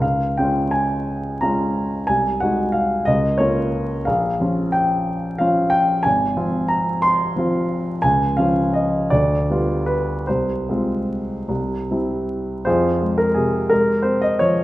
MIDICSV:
0, 0, Header, 1, 2, 480
1, 0, Start_track
1, 0, Tempo, 688073
1, 15, Time_signature, 6, 3, 24, 8
1, 1454, Tempo, 660066
1, 5774, Tempo, 727273
1, 6734, Tempo, 804290
1, 8174, Tempo, 769231
1, 8654, Tempo, 685714
1, 10038, End_track
2, 0, Start_track
2, 0, Title_t, "Grand piano"
2, 0, Program_c, 0, 0
2, 0, Control_c, 0, 64, 127
2, 0, Note_on_c, 0, 37, 34
2, 11, Note_on_c, 0, 77, 50
2, 27, Control_c, 0, 64, 0
2, 128, Control_c, 0, 64, 127
2, 237, Note_off_c, 0, 37, 0
2, 254, Note_off_c, 0, 77, 0
2, 261, Note_on_c, 0, 79, 45
2, 271, Note_on_c, 0, 61, 26
2, 274, Note_on_c, 0, 56, 26
2, 281, Note_on_c, 0, 65, 27
2, 497, Note_on_c, 0, 80, 49
2, 498, Note_off_c, 0, 79, 0
2, 959, Note_off_c, 0, 61, 0
2, 961, Note_off_c, 0, 56, 0
2, 964, Note_off_c, 0, 65, 0
2, 981, Note_off_c, 0, 80, 0
2, 982, Note_on_c, 0, 82, 52
2, 991, Note_on_c, 0, 61, 27
2, 994, Note_on_c, 0, 65, 31
2, 998, Note_on_c, 0, 56, 26
2, 1432, Note_off_c, 0, 61, 0
2, 1434, Note_off_c, 0, 65, 0
2, 1436, Note_off_c, 0, 56, 0
2, 1443, Note_on_c, 0, 80, 57
2, 1455, Note_on_c, 0, 36, 37
2, 1456, Note_off_c, 0, 82, 0
2, 1467, Control_c, 0, 64, 0
2, 1572, Control_c, 0, 64, 127
2, 1686, Note_on_c, 0, 78, 53
2, 1688, Note_off_c, 0, 36, 0
2, 1688, Note_off_c, 0, 80, 0
2, 1701, Note_on_c, 0, 56, 27
2, 1701, Note_on_c, 0, 63, 26
2, 1701, Note_on_c, 0, 66, 29
2, 1918, Note_on_c, 0, 77, 49
2, 1928, Note_off_c, 0, 78, 0
2, 2144, Note_off_c, 0, 56, 0
2, 2144, Note_off_c, 0, 63, 0
2, 2144, Note_off_c, 0, 66, 0
2, 2159, Note_on_c, 0, 75, 61
2, 2163, Note_off_c, 0, 77, 0
2, 2170, Note_on_c, 0, 37, 41
2, 2183, Control_c, 0, 64, 0
2, 2287, Control_c, 0, 64, 127
2, 2393, Note_on_c, 0, 73, 52
2, 2402, Note_off_c, 0, 37, 0
2, 2404, Note_off_c, 0, 75, 0
2, 2406, Note_on_c, 0, 58, 27
2, 2410, Note_on_c, 0, 61, 28
2, 2414, Note_on_c, 0, 65, 31
2, 2868, Note_off_c, 0, 58, 0
2, 2870, Note_off_c, 0, 61, 0
2, 2872, Note_off_c, 0, 65, 0
2, 2885, Note_on_c, 0, 77, 54
2, 2891, Note_off_c, 0, 73, 0
2, 2899, Note_on_c, 0, 34, 41
2, 2911, Control_c, 0, 64, 0
2, 3051, Control_c, 0, 64, 127
2, 3138, Note_off_c, 0, 34, 0
2, 3138, Note_on_c, 0, 53, 27
2, 3146, Note_on_c, 0, 65, 31
2, 3148, Note_on_c, 0, 61, 28
2, 3372, Note_on_c, 0, 79, 55
2, 3381, Note_off_c, 0, 77, 0
2, 3831, Note_off_c, 0, 53, 0
2, 3835, Note_off_c, 0, 65, 0
2, 3836, Note_off_c, 0, 61, 0
2, 3854, Note_on_c, 0, 77, 55
2, 3856, Note_off_c, 0, 79, 0
2, 3865, Note_on_c, 0, 53, 29
2, 3867, Note_on_c, 0, 61, 30
2, 3872, Note_on_c, 0, 65, 34
2, 4082, Note_on_c, 0, 79, 61
2, 4095, Note_off_c, 0, 77, 0
2, 4311, Note_off_c, 0, 53, 0
2, 4312, Note_off_c, 0, 61, 0
2, 4315, Note_off_c, 0, 65, 0
2, 4321, Note_on_c, 0, 80, 61
2, 4331, Note_off_c, 0, 79, 0
2, 4343, Note_on_c, 0, 32, 41
2, 4352, Control_c, 0, 64, 0
2, 4470, Control_c, 0, 64, 127
2, 4566, Note_on_c, 0, 60, 30
2, 4567, Note_on_c, 0, 53, 29
2, 4569, Note_on_c, 0, 65, 33
2, 4574, Note_off_c, 0, 32, 0
2, 4799, Note_on_c, 0, 82, 56
2, 4808, Note_off_c, 0, 80, 0
2, 5043, Note_on_c, 0, 84, 70
2, 5045, Note_off_c, 0, 82, 0
2, 5255, Note_off_c, 0, 53, 0
2, 5255, Note_off_c, 0, 60, 0
2, 5256, Note_off_c, 0, 65, 0
2, 5291, Note_on_c, 0, 53, 30
2, 5299, Note_on_c, 0, 60, 31
2, 5305, Note_on_c, 0, 65, 33
2, 5747, Note_off_c, 0, 53, 0
2, 5751, Note_off_c, 0, 60, 0
2, 5755, Note_off_c, 0, 65, 0
2, 5770, Note_on_c, 0, 80, 63
2, 5771, Note_off_c, 0, 84, 0
2, 5780, Note_on_c, 0, 37, 39
2, 5787, Control_c, 0, 64, 0
2, 5889, Control_c, 0, 64, 127
2, 6000, Note_on_c, 0, 77, 54
2, 6004, Note_off_c, 0, 37, 0
2, 6006, Note_off_c, 0, 80, 0
2, 6010, Note_on_c, 0, 53, 30
2, 6013, Note_on_c, 0, 61, 29
2, 6017, Note_on_c, 0, 65, 33
2, 6242, Note_on_c, 0, 75, 49
2, 6243, Note_off_c, 0, 77, 0
2, 6464, Note_off_c, 0, 53, 0
2, 6465, Note_off_c, 0, 61, 0
2, 6467, Note_off_c, 0, 65, 0
2, 6485, Note_on_c, 0, 74, 58
2, 6487, Note_off_c, 0, 75, 0
2, 6494, Note_on_c, 0, 38, 42
2, 6503, Control_c, 0, 64, 0
2, 6632, Control_c, 0, 64, 127
2, 6730, Note_off_c, 0, 38, 0
2, 6746, Note_on_c, 0, 55, 26
2, 6750, Note_on_c, 0, 59, 27
2, 6755, Note_on_c, 0, 65, 31
2, 6963, Note_off_c, 0, 74, 0
2, 6963, Note_on_c, 0, 71, 49
2, 7186, Note_off_c, 0, 55, 0
2, 7187, Note_off_c, 0, 59, 0
2, 7190, Note_off_c, 0, 65, 0
2, 7203, Note_off_c, 0, 71, 0
2, 7206, Note_on_c, 0, 72, 45
2, 7215, Note_on_c, 0, 36, 35
2, 7217, Control_c, 0, 64, 0
2, 7325, Control_c, 0, 64, 127
2, 7448, Note_off_c, 0, 36, 0
2, 7457, Note_on_c, 0, 56, 26
2, 7461, Note_on_c, 0, 60, 26
2, 7466, Note_on_c, 0, 65, 30
2, 7916, Note_off_c, 0, 56, 0
2, 7918, Note_off_c, 0, 60, 0
2, 7921, Note_off_c, 0, 65, 0
2, 7932, Note_on_c, 0, 36, 38
2, 7947, Control_c, 0, 64, 0
2, 8073, Control_c, 0, 64, 127
2, 8167, Note_off_c, 0, 36, 0
2, 8183, Note_on_c, 0, 60, 25
2, 8185, Note_on_c, 0, 55, 23
2, 8189, Note_on_c, 0, 64, 27
2, 8426, Note_off_c, 0, 72, 0
2, 8635, Note_off_c, 0, 60, 0
2, 8636, Note_off_c, 0, 55, 0
2, 8638, Note_off_c, 0, 64, 0
2, 8646, Note_on_c, 0, 72, 54
2, 8654, Note_on_c, 0, 41, 38
2, 8655, Note_on_c, 0, 68, 41
2, 8657, Note_on_c, 0, 65, 41
2, 8671, Control_c, 0, 64, 0
2, 8792, Control_c, 0, 64, 127
2, 8899, Note_on_c, 0, 56, 28
2, 8995, Note_off_c, 0, 68, 0
2, 8996, Note_off_c, 0, 65, 0
2, 9015, Note_on_c, 0, 70, 50
2, 9016, Note_off_c, 0, 72, 0
2, 9131, Note_on_c, 0, 68, 49
2, 9139, Note_off_c, 0, 70, 0
2, 9140, Note_on_c, 0, 48, 31
2, 9287, Note_off_c, 0, 56, 0
2, 9378, Note_on_c, 0, 70, 57
2, 9379, Note_off_c, 0, 68, 0
2, 9387, Note_on_c, 0, 56, 34
2, 9398, Control_c, 0, 64, 0
2, 9519, Control_c, 0, 64, 127
2, 9528, Note_off_c, 0, 48, 0
2, 9608, Note_on_c, 0, 72, 55
2, 9619, Note_on_c, 0, 60, 32
2, 9622, Note_off_c, 0, 70, 0
2, 9736, Note_off_c, 0, 72, 0
2, 9741, Note_on_c, 0, 75, 58
2, 9770, Note_off_c, 0, 56, 0
2, 9860, Note_off_c, 0, 75, 0
2, 9865, Note_on_c, 0, 73, 58
2, 9877, Note_on_c, 0, 53, 31
2, 9998, Note_off_c, 0, 60, 0
2, 10038, Note_off_c, 0, 41, 0
2, 10038, Note_off_c, 0, 53, 0
2, 10038, Note_off_c, 0, 73, 0
2, 10038, End_track
0, 0, End_of_file